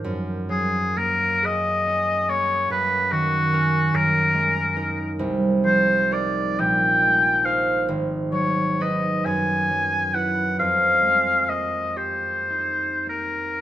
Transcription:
X:1
M:6/8
L:1/8
Q:3/8=45
K:Gblyd
V:1 name="Oboe"
z A B e2 d | _c G2 B3 | [K:Fm] z c =d g2 f | z d e a2 _g |
f2 e c2 B |]
V:2 name="Harp"
[G,,B] G, B, A D B, | G,, E, [DB] G,, A, [EB] | [K:Fm] C,, F, [EB] B,,, A, [Ec] | A,,, _G, [E_c] _G,, G, [_Fc] |
F,, A, B, G E B, |]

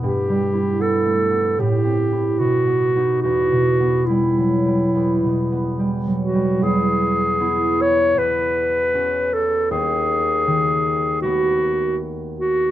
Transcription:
X:1
M:4/4
L:1/8
Q:1/4=78
K:Em
V:1 name="Clarinet"
G2 A2 G2 F2 | F2 E4 z F | [K:E] G3 c B3 A | G4 F2 z F |]
V:2 name="Harp"
(3[G,,B,E] G, E (3B, A, B, (3A,, C E (3B,, B, [B,^D] | (3E,, B,, B, (3G, F, G, (3E,, B,, B, (3G, F, G, | [K:E] E,,2 [B,E]2 E,,2 [CF]2 | D,,2 D,2 [A,B,F]4 |]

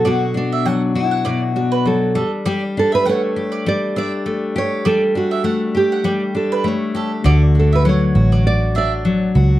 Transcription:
X:1
M:4/4
L:1/16
Q:"Swing 16ths" 1/4=100
K:Glyd
V:1 name="Mandolin"
d z2 e f z2 f d z2 B z2 A z | d z2 e f z2 d2 z e z4 z | d z2 e f z2 f d z2 B z2 A z | d z2 e f z2 d2 z e z4 z |]
V:2 name="Nylon-string guitar"
F2 D4 E4 F2 A3 z | z2 A B c4 d2 d4 c2 | A2 F4 G4 A2 c3 z | z2 A B c4 d2 d4 z2 |]
V:3 name="Steel-string acoustic guitar"
[B,,F,DF]2 D2 F,2 F2 B,,2 D2 F,2 G,2 | [G,G]2 D2 A,2 G2 G,2 D2 A,2 G2 | G,2 D2 A,2 G2 G,2 D2 A,2 G2 | [D,F]2 D2 F,2 F4 D2 F,2 F2 |]
V:4 name="Picked electric bass" clef=bass
z16 | z16 | z16 | D,,6 A,,,8 C,,2 |]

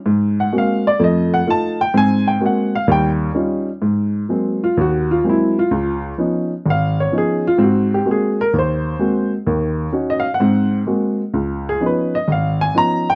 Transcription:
X:1
M:4/4
L:1/16
Q:"Swing" 1/4=128
K:Abmix
V:1 name="Upright piano"
z2 g2 f2 =d2 e2 g2 =a2 =g2 | a2 =g2 _g2 f2 =g2 z6 | z6 F2 G2 F2 _F2 =F2- | F2 z6 f2 d2 A2 F2 |
G2 =G2 A2 B2 c6 z2 | z4 z e f g4 z4 z | z2 A2 _c2 e2 f2 a2 b2 =g2 |]
V:2 name="Upright piano"
A,,4 [A,B,CG]2 z2 [F,,=A,]4 [A,EF]2 z2 | [A,,C]4 [A,B,CG]2 z2 [E,,=G,]4 [G,DEF]2 z2 | A,,4 [G,A,B,C]2 z2 E,,4 [G,A,B,C]2 z2 | D,,4 [F,_CDE]2 z2 A,,,4 [F,CDE]2 z2 |
[A,,C]4 [A,B,CG]2 z2 E,,4 [A,B,CG]2 z2 | [E,,E,]4 [DEG]2 z2 [A,,C]4 [A,B,CG]2 z2 | D,,4 [F,_CDE]2 z2 A,,,4 [F,CDE]2 z2 |]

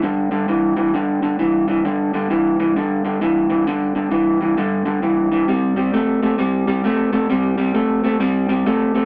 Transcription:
X:1
M:4/4
L:1/8
Q:"Swing" 1/4=132
K:Cdor
V:1 name="Clean electric guitar" clef=bass
[G,,D,] [G,,D,] [G,,=E,] [G,,E,] [G,,D,] [G,,D,] [G,,E,] [G,,E,] | [G,,D,] [G,,D,] [G,,=E,] [G,,E,] [G,,D,] [G,,D,] [G,,E,] [G,,E,] | [G,,D,] [G,,D,] [G,,=E,] [G,,E,] [G,,D,] [G,,D,] [G,,E,] [G,,E,] | [C,G,] [C,G,] [C,A,] [C,A,] [C,G,] [C,G,] [C,A,] [C,A,] |
[C,G,] [C,G,] [C,A,] [C,A,] [C,G,] [C,G,] [C,A,] [C,A,] |]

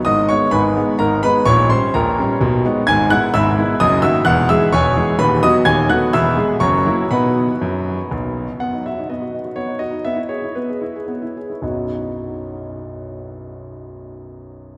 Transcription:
X:1
M:3/4
L:1/16
Q:1/4=124
K:B
V:1 name="Grand piano"
[dd']2 [cc']2 [Bgb]4 [Aa]2 [Bb]2 | [_d_d']2 [=c=c']2 [_B=g_b]6 z2 | [gg']2 [ff']2 [ebe']4 [dd']2 [ee']2 | [ff']2 [ee']2 [cgc']4 [Bb]2 [dd']2 |
[gg']2 [ff']2 [ebe']4 [cac']4 | [Bfb]8 z4 | f2 e2 d4 c2 d2 | e2 c2 B6 z2 |
[B,,,F,,F,B,DFd]12- | [B,,,F,,F,B,DFd]12 |]
V:2 name="Grand piano"
[G,,,G,,]2 [G,B,D]2 [G,,,G,,]2 [G,B,D]2 [G,,,G,,]2 [G,B,D]2 | [_B,,,_B,,]2 [=G,_D]2 [B,,,B,,]2 [G,D]2 [=B,,,=B,,]2 [^G,B,^D]2 | [G,,,G,,]2 [G,B,E]2 [G,,,G,,]2 [G,B,E]2 [F,,,F,,]2 [D,A,F]2 | [E,,,E,,]2 [E,G,G]2 [E,,,E,,]2 [E,G,G]2 [D,,,D,,]2 [F,B,F]2 |
[D,,,D,,]2 [=A,B,F]2 [E,,,E,,]2 [G,B,G]2 [F,,,F,,]2 [F,^A,E]2 | [B,,B,D]4 F,,4 B,,,4 | B, D F D B, F D F B, D F D | B, E G E B, G E G B, E G E |
z12 | z12 |]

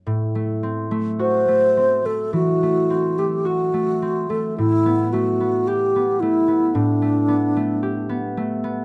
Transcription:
X:1
M:4/4
L:1/16
Q:1/4=54
K:Ador
V:1 name="Alto flute"
z4 c3 A F3 G F3 A | E2 F2 G2 E2 D6 z2 |]
V:2 name="Harp"
A,, A, C A, F A, C A, E, A, C A, F A, C A, | A,, B, A, B, G B, A, B, A,, A, B, A, G B, A, B, |]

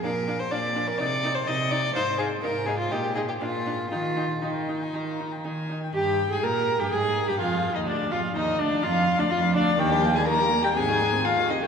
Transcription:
X:1
M:4/4
L:1/16
Q:1/4=125
K:Eb
V:1 name="Violin"
f2 f2 f2 f2 e2 e2 e2 e2 | f2 f2 f2 f2 e2 e2 f2 f2 | g2 g2 g3 a b3 g a3 g | g3 a b3 g a3 g f3 e |
d2 f2 e2 d2 f3 d f2 d2 | g3 a b3 g a4 f2 e g |]
V:2 name="Violin"
B3 c d3 B d3 c e2 d2 | c2 A2 B2 A F G2 A G F4 | F4 E8- E2 z2 | G3 A B3 G A3 G F3 E |
D2 F2 E2 D2 F3 D F2 D2 | G3 A B3 G A4 F2 E G |]
V:3 name="Viola"
D2 D2 D2 D2 E2 E2 E2 E2 | E2 E2 E2 E2 E2 E2 D2 D2 | E2 E2 E2 E2 E2 E2 E2 E2 | G3 A B3 G A3 G F3 E |
D2 F2 E2 D2 F3 D F2 D2 | E, G, B, G, E, G, B, G, C, E, A, C A, E, C, E, |]
V:4 name="Cello" clef=bass
B,,4 B,,4 C,4 C,4 | A,,4 A,,4 B,,4 B,,4 | E,4 E,4 E,4 E,4 | G,,3 A,, B,,3 G,, A,,3 G,, F,,3 E,, |
D,,2 F,,2 E,,2 D,,2 F,,3 D,, F,,2 D,,2 | E,,4 z4 A,,4 z4 |]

